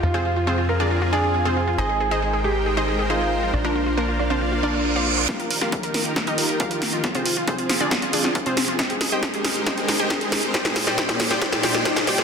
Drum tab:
HH |----------------|----------------|----------------|xxoxxxoxxxoxxxox|
SD |----------------|----------------|----------------|o--o--o-o-----o-|
BD |----------------|----------------|----------------|o---o---o---o---|

HH |xxoxxxoxxxoxxxox|xxoxxxoxxxo-xxox|xxoxxxoxxxoxxxox|
SD |o-----o-o--o--o-|o-o-o-o-o-o-o-o-|oooooooooooooooo|
BD |o---o---o---o---|o---o---o---o---|o---o---o---o---|